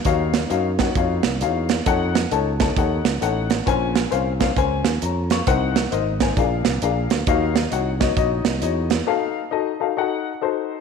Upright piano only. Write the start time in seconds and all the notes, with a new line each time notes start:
0.05 D#3 D#4 F#4 C#5 F5
0.50 D#4 F#4 C#5 F5
0.79 D#4 F#4 C#5 F#5
0.96 D#4 F#4 C#5 F5
1.41 D#4 F#4 C#5 F5
1.86 D#4 A4 C#5 F#5
2.31 D#4 A4 C#5 A5
2.60 D#4 A4 C#5 A5
2.77 D#4 A4 C#5 F#5
3.21 D#4 A4 C#5 F#5
3.66 A#2 C#4 A#4 C5 G#5
4.11 C#4 A#4 C5 F5
4.40 C#4 A#4 C5 F5
4.57 C#4 A#4 C5 G#5
5.03 C#5 A#5
5.32 F5 C#6
5.47 C3 D#4 A#4 C5 F#5
5.92 D#4 A#4 C5 D#5
6.21 D#4 A#4 C5 G#5
6.37 A#2 D4 G#4 A#4 F5
6.82 D4 G#4 A#4 F5
7.27 D#3 D#4 F#4 C#5 F5
7.71 D#4 F#4 C#5 F#5
8.00 D#4 F#4 C#5 D#5
8.17 D#4 F#4 C#5 D#5
8.61 D#4 F#4 C#5 D#5
9.07 D#4 F#4 A4 F5
9.51 D#4 F#4 A4 D#5
9.80 D#4 F#4 A4 F5
9.97 D#4 F#4 A4 F#5
10.41 D#4 F#4 A4 C5